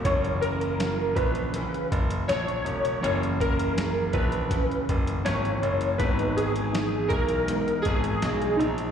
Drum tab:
HH |xxxxx-xxxxxxxxxx|xxxxx-xxxxxxxxxx|xxxxx-xxxxxxxxxx|
SD |----o-------o---|----o-------o---|----o-------o---|
BD |o-----o---o-----|--o---o-o-o-----|o-----o---o-----|